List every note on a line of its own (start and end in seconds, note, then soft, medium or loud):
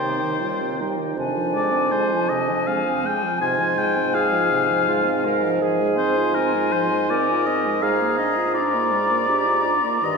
0.00 1.18 D#2 soft
0.00 0.23 C3 soft
0.00 0.43 D#4 soft
0.00 1.17 C5 medium
0.00 1.13 G5 soft
0.22 0.44 D#3 soft
0.42 0.63 G3 soft
0.42 0.80 F4 soft
0.61 0.83 C4 soft
0.80 1.00 G3 soft
0.80 1.18 D#4 soft
0.99 1.17 D#3 soft
1.17 3.15 F2 medium
1.17 1.37 C3 soft
1.17 2.69 D4 medium
1.17 5.32 G#5 soft
1.36 1.56 F3 soft
1.55 1.74 G#3 soft
1.55 1.93 D5 medium
1.72 1.93 C4 soft
1.91 2.14 G#3 soft
1.91 2.30 C5 medium
2.12 2.33 F3 soft
2.29 2.52 C3 soft
2.29 2.69 D#5 medium
2.50 2.70 F3 soft
2.67 2.88 G#3 soft
2.67 3.15 C4 soft
2.67 3.07 F5 medium
2.86 3.06 C4 soft
3.05 3.26 G#3 soft
3.05 3.41 G5 medium
3.24 3.41 F3 soft
3.40 7.79 G#2 medium
3.40 3.62 C3 medium
3.40 4.16 F4 medium
3.40 3.79 G#5 medium
3.60 3.80 F3 soft
3.78 3.98 G#3 soft
3.78 4.15 G5 medium
3.97 4.16 C4 soft
4.14 4.34 G#3 medium
4.14 4.88 G#4 medium
4.14 5.62 F5 medium
4.33 4.53 F3 soft
4.51 4.72 C3 medium
4.71 4.89 F3 soft
4.88 5.07 G#3 soft
4.88 5.27 F4 medium
5.06 5.26 C4 soft
5.25 5.45 G#3 soft
5.25 5.63 A#4 medium
5.44 5.62 F3 medium
5.61 5.82 F3 medium
5.61 6.35 G#4 medium
5.61 7.78 G#5 medium
5.80 5.99 G#3 soft
5.97 6.19 C4 soft
5.97 6.37 C5 medium
6.17 6.38 F4 soft
6.35 6.56 C4 medium
6.35 7.08 F4 medium
6.35 6.74 A#4 medium
6.55 6.75 G#3 soft
6.72 6.93 F3 medium
6.72 7.11 C5 medium
6.92 7.13 G#3 soft
7.10 7.32 C4 soft
7.10 7.84 A#4 medium
7.10 7.48 D5 medium
7.30 7.49 F4 soft
7.47 7.68 C4 soft
7.47 7.84 D#5 medium
7.66 7.83 G#3 soft
7.81 9.73 G#2 medium
7.81 8.03 G#3 medium
7.81 8.56 G#4 medium
7.81 8.17 F5 medium
7.81 10.17 A#5 medium
8.01 8.21 A#3 soft
8.18 8.39 D4 soft
8.18 8.54 D#5 medium
8.37 8.58 F4 soft
8.54 8.75 D4 medium
8.54 9.30 F4 medium
8.54 10.06 D5 medium
8.74 8.93 A#3 soft
8.91 9.12 G#3 soft
9.10 9.30 A#3 soft
9.28 9.48 D4 soft
9.28 9.67 G4 medium
9.46 9.66 F4 soft
9.65 9.85 D4 soft
9.65 10.17 F4 medium
9.84 10.01 A#3 soft
10.02 10.17 G2 medium
10.02 10.17 D#3 soft
10.02 10.17 D#5 medium